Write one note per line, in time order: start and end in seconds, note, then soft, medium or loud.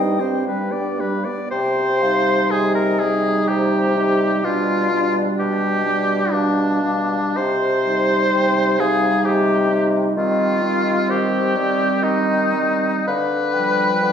0.00 1.14 G2 medium
0.00 0.22 G3 soft
0.00 0.21 D#4 soft
0.00 0.22 D#5 soft
0.00 0.94 G5 medium
0.20 0.46 C4 soft
0.20 0.45 G4 soft
0.20 0.46 C5 soft
0.46 0.74 G3 soft
0.46 0.74 D4 soft
0.46 0.73 B4 soft
0.72 1.01 B3 soft
0.72 1.01 G4 soft
0.72 1.02 D5 soft
1.00 1.28 G3 soft
1.00 1.28 D4 soft
1.00 1.26 B4 soft
1.25 1.52 B3 soft
1.25 1.52 G4 soft
1.25 1.51 D5 medium
1.51 2.40 C3 medium
1.51 2.52 C5 medium
1.51 2.04 G5 medium
2.02 2.99 G3 soft
2.02 2.98 D#4 soft
2.02 2.53 F5 medium
2.51 3.38 C3 medium
2.51 2.74 G#4 medium
2.51 3.51 D#5 medium
2.75 3.01 A#4 medium
2.99 3.96 G3 soft
2.99 3.96 D#4 soft
2.99 3.50 G#4 medium
3.48 4.33 C3 medium
3.48 4.46 G4 medium
3.48 3.99 C5 medium
3.97 4.44 G3 soft
3.97 4.43 D#4 soft
3.97 4.44 D#5 soft
4.44 5.28 B2 medium
4.44 4.91 G3 soft
4.44 4.91 D4 soft
4.44 5.22 F4 medium
4.44 5.40 D5 medium
4.92 5.83 G3 soft
4.92 5.83 D4 soft
5.39 6.21 B2 medium
5.39 6.34 G4 medium
5.39 5.89 D#5 soft
5.85 6.82 G3 soft
5.85 6.82 D4 soft
5.85 6.36 D5 soft
6.32 7.24 B2 medium
6.32 7.38 D4 medium
6.32 7.36 F5 medium
6.83 7.35 G3 soft
6.83 7.35 D4 soft
7.36 8.21 C3 medium
7.36 8.81 C5 medium
7.36 8.04 D#5 medium
7.85 8.77 G3 soft
7.85 8.78 D#4 soft
8.32 9.14 C3 medium
8.32 8.82 G5 medium
8.79 9.68 G3 soft
8.79 9.68 D#4 soft
8.79 9.27 G#4 medium
8.79 9.26 F5 medium
9.25 10.05 C3 medium
9.25 9.90 G4 medium
9.25 10.15 D#5 medium
9.70 10.16 G3 soft
9.70 10.15 D#4 soft
10.16 10.99 D#3 medium
10.16 10.62 G3 soft
10.16 10.62 C4 soft
10.16 11.11 F4 medium
10.16 11.10 D#5 medium
10.63 11.54 G3 soft
10.63 11.54 C4 soft
11.09 11.92 D#3 medium
11.09 12.05 G4 medium
11.09 11.57 C5 medium
11.56 12.53 G3 soft
11.56 12.52 C4 soft
11.56 12.04 D5 medium
12.02 12.95 D#3 medium
12.02 13.07 D#4 medium
12.02 13.06 D#5 medium
12.53 13.07 G3 soft
12.53 13.05 C4 soft
13.06 13.92 D3 medium
13.06 14.12 B4 medium
13.06 13.55 F5 medium
13.53 14.12 F3 soft
13.53 14.12 G3 medium
13.53 14.12 G5 medium
14.03 14.12 D3 medium